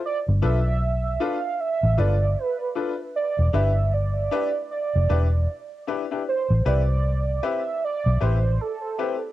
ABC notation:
X:1
M:4/4
L:1/16
Q:"Swing 16ths" 1/4=77
K:Am
V:1 name="Soft synth lead"
d2 e4 f2 e2 d2 B3 z | d2 e2 d4 d6 z2 | c2 d4 e2 d2 c2 A3 z |]
V:2 name="Grand piano"
z2 [DFAB] z3 [DFAB] z3 [DFAB] z3 [DFAB] z | z2 [DEGB] z3 [DEGB] z3 [DEGB] z3 [DEGB] [DEGB] | z2 [CEGB] z3 [CEGB] z3 [CEGB] z3 [CEGB] z |]
V:3 name="Fingered electric bass" clef=bass
z G,,, B,,,4 z3 A,,, G,,,2 z4 | z E,,, G,,,4 z3 F,,, E,,,2 z4 | z A,,, C,,4 z3 B,,, A,,,2 z4 |]